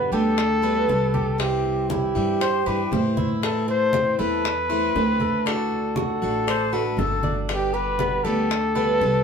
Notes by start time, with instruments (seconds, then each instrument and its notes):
Already playing: steel-string acoustic guitar B2 D3 G3 B3 G4, cuban tres B3, trumpet B4
0.12 upright bass D2, steel-string acoustic guitar D3 G3 B3 G4, cuban tres G4, trumpet A4, high bongo, high conga
0.38 muted steel-string acoustic guitar stroke, high bongo, high conga
0.62 steel-string acoustic guitar D3 G3 B3 G4, cuban tres B4, high bongo, high conga
0.88 upright bass C2, steel-string acoustic guitar D3 G3 B3 G4, high bongo, low bongo, high conga
1.14 cuban tres G4, high bongo, high conga
1.38 steel-string acoustic guitar C3 E3 G3 C4 E4, cuban tres C4, trumpet G4, high bongo, high conga
1.65 high conga
1.90 cuban tres E4, trumpet G4, high bongo, high conga
2.15 upright bass G2, steel-string acoustic guitar E3 G3 C4 E4, high bongo, high conga
2.41 flute C5, cuban tres C5, muted steel-string acoustic guitar stroke, high bongo, high conga
2.66 upright bass G2, steel-string acoustic guitar E3 G3 C4 E4, cuban tres G4, flute B4, high bongo, high conga
2.92 upright bass A2, steel-string acoustic guitar E3 G3 C4 E4, flute C5, high bongo, low bongo, high conga
3.17 cuban tres E4, high bongo, high conga
3.42 steel-string acoustic guitar E3 A3 C4 E4, trumpet A4, high bongo, high conga
3.68 cuban tres A4, trumpet C5, high conga
3.93 cuban tres C4, high bongo, high conga
4.19 upright bass E2, steel-string acoustic guitar A3 C4 E4, cuban tres A4, trumpet B4, high bongo, high conga
4.44 muted steel-string acoustic guitar stroke, high bongo, high conga
4.70 steel-string acoustic guitar A3 C4 E4, cuban tres C4, high bongo, high conga
4.95 upright bass D2, steel-string acoustic guitar E3 A3 C4 E4, high bongo, low bongo, high conga
5.20 cuban tres A4, high bongo, high conga
5.45 steel-string acoustic guitar D3 A3 D4 F#4, cuban tres D4, trumpet A4, high bongo, high conga
5.71 high conga
5.96 cuban tres F#4, trumpet A4, high bongo, high conga
6.21 upright bass A1, steel-string acoustic guitar A3 D4 F#4, high bongo, high conga
6.47 flute C5, cuban tres D5, muted steel-string acoustic guitar stroke, high bongo, high conga
6.72 steel-string acoustic guitar A3 D4 F#4, cuban tres A4, flute B4, high bongo, high conga
6.97 upright bass G1, steel-string acoustic guitar D3 A3 D4 F#4, flute A4, high bongo, low bongo, high conga
7.23 cuban tres D4, high bongo, high conga
7.49 steel-string acoustic guitar B2 D3 G3 B3 G4, trumpet G4, high bongo, high conga
7.74 cuban tres G4, trumpet B4, high conga
7.99 cuban tres B3, high bongo, high conga
8.24 upright bass D2, steel-string acoustic guitar D3 G3 B3 G4, cuban tres G4, trumpet A4, high bongo, high conga
8.50 muted steel-string acoustic guitar stroke, high bongo, high conga
8.75 steel-string acoustic guitar D3 G3 B3 G4, cuban tres B4, high bongo, high conga
9.00 upright bass C2, steel-string acoustic guitar D3 G3 B3 G4, high bongo, low bongo, high conga